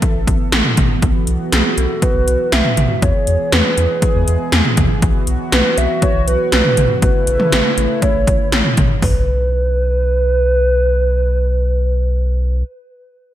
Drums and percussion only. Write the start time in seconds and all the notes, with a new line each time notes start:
0.02 kick, closed hi-hat
0.27 kick, closed hi-hat
0.52 snare, closed hi-hat
0.65 mid tom
0.77 kick, closed hi-hat, mid tom
1.02 kick, closed hi-hat
1.27 closed hi-hat
1.52 snare, closed hi-hat
1.78 closed hi-hat
2.02 kick, closed hi-hat
2.28 closed hi-hat
2.52 snare, closed hi-hat
2.65 mid tom
2.77 closed hi-hat, mid tom
3.02 kick, closed hi-hat
3.27 closed hi-hat
3.52 snare, closed hi-hat
3.78 closed hi-hat
4.02 kick, closed hi-hat
4.28 closed hi-hat
4.52 snare, closed hi-hat
4.65 mid tom
4.77 kick, closed hi-hat, mid tom
5.02 kick, closed hi-hat
5.27 closed hi-hat
5.52 snare, closed hi-hat
5.78 closed hi-hat
6.02 kick, closed hi-hat
6.28 closed hi-hat
6.52 snare, closed hi-hat
6.65 mid tom
6.77 closed hi-hat, mid tom
7.02 kick, closed hi-hat
7.27 closed hi-hat
7.40 mid tom
7.52 snare, closed hi-hat
7.78 closed hi-hat
8.02 kick, closed hi-hat
8.27 kick, closed hi-hat
8.52 snare, closed hi-hat
8.65 mid tom
8.77 kick, closed hi-hat, mid tom
9.02 kick, floor tom, open hi-hat